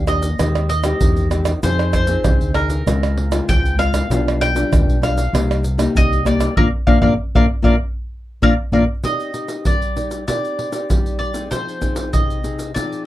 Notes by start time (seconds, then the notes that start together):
Already playing: D#2 A#2 F5
0.07 A#3 D4 G4 D#5, pandeiro, tamborim, shaker
0.23 pandeiro, shaker
0.39 D#2 D#3 G#3 C4 G4, pandeiro, tamborim, shaker, surdo
0.55 pandeiro, tamborim, shaker
0.69 D#5, pandeiro, shaker
0.84 G#3 C4 G4, pandeiro, tamborim, shaker
1.01 E2 D#3, pandeiro, shaker, surdo
1.16 pandeiro, shaker
1.31 G#3 C4 G4, pandeiro, tamborim, shaker
1.45 pandeiro, tamborim, shaker
1.63 F2 F3 C4 D#4 G#4 C5, pandeiro, shaker, surdo
1.79 pandeiro, tamborim, shaker
1.93 C5, pandeiro, tamborim, shaker, surdo
2.07 C4 D#4 G#4, pandeiro, shaker
2.24 C2 C3, pandeiro, tamborim, shaker, surdo
2.41 D2, pandeiro, shaker
2.54 C4 D#4 G#4 A#4, pandeiro, tamborim
2.70 pandeiro, shaker
2.86 C#2 C#3 G#3 C4 F4, pandeiro, tamborim, shaker, surdo
3.03 pandeiro, tamborim, shaker
3.17 pandeiro
3.31 G#3 C4 F4, pandeiro, tamborim, shaker
3.48 C#2 G#2 G5, pandeiro, shaker, surdo
3.66 pandeiro, shaker
3.78 G#3 C4 F4 F5, pandeiro, tamborim, shaker
3.94 pandeiro, tamborim, shaker
4.10 B1 B2 G3 D4 F4, pandeiro, shaker, surdo
4.28 pandeiro, tamborim, shaker
4.41 G5, pandeiro, tamborim, shaker
4.55 G3 D4 F4, pandeiro, shaker
4.72 D2 B2, pandeiro, tamborim, shaker, surdo
4.87 B1, pandeiro, shaker
5.02 G3 D4 F4 F5, pandeiro, tamborim, shaker
5.18 pandeiro, shaker
5.33 C2 C3 A#3 D#4 G4, pandeiro, tamborim, shaker, surdo
5.51 pandeiro, tamborim, shaker
5.64 pandeiro, shaker
5.78 A#3 D#4 G4, pandeiro, tamborim, shaker
5.95 C2 G3 D#5, pandeiro, shaker, surdo
6.13 pandeiro, shaker
6.25 A#3 D#4 G4 D5, pandeiro, tamborim, shaker
6.40 pandeiro, tamborim, shaker
6.57 A#1 A#3 D4 F4 A#4 D5 F5, surdo
6.87 A#1 A#3 D4 F4 A#4 D5 F5, surdo
7.01 A#1 A#3 D4 F4 A#4 D5 F5, surdo
7.35 A#1 A#3 D4 F4 A#4 D5 F5, surdo
7.62 A#1 A#3 D4 F4 A#4 D5 F5, surdo
8.42 A#1 A#3 D4 F4 A#4 D5 F5, surdo
8.72 A#1 A#3 D4 F4 A#4 D5 F5, surdo
9.04 C4 D#4 G4 D5 D#5, pandeiro, shaker, surdo
9.20 pandeiro, shaker
9.34 D#4 G4, pandeiro, shaker
9.48 pandeiro, shaker
9.65 G3 D5, pandeiro, shaker, surdo
9.82 pandeiro, shaker
9.96 D#4 G4 D5, pandeiro, shaker
10.11 pandeiro, shaker
10.28 C4 D#4 G4 D5, pandeiro, shaker, surdo
10.45 pandeiro, shaker
10.59 pandeiro
10.72 D#4 G4 D5, pandeiro, shaker
10.89 G3, pandeiro, shaker, surdo
11.06 pandeiro, shaker
11.19 D5, pandeiro
11.34 C4 D#4 G#4, pandeiro, shaker
11.51 F3 C5, pandeiro, shaker, surdo
11.68 pandeiro, shaker
11.81 C4 D#4 G#4, pandeiro, shaker, surdo
11.96 pandeiro, shaker
12.13 C3 D#5, pandeiro, shaker, surdo
12.30 pandeiro, shaker
12.43 C4 D#4 G#4, pandeiro, shaker
12.59 pandeiro, shaker
12.74 F3 C4 D#4 G#4 D5, pandeiro, shaker, surdo
12.93 pandeiro, shaker